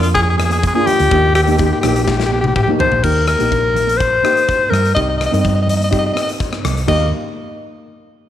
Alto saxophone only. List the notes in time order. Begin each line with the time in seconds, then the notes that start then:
0.02 F4
0.14 G#4
0.23 G#4
0.30 G#4
0.37 G#4
0.45 G#4
0.52 G#4
0.59 G#4
0.67 G#4
0.75 G#4
0.86 G4
1.35 G4
1.43 G4
1.51 G4
1.58 G4
1.66 G4
1.73 G4
1.81 G4
1.88 G4
1.95 G4
2.04 G4
2.11 G4
2.18 G4
2.26 G4
2.33 G4
2.41 G4
2.48 G4
2.56 G4
2.63 G4
2.80 C5
3.03 A#4
3.28 A#4
3.97 C5
4.70 A#4
4.95 D#5
5.02 D#5
5.09 D#5
5.18 D#5
5.26 D#5
5.34 D#5
5.41 D#5
5.49 D#5
5.55 D#5
5.62 D#5
5.70 D#5
5.76 D#5
5.84 D#5
5.91 D#5
5.99 D#5
6.06 D#5
6.13 D#5
6.22 D#5
6.88 D#5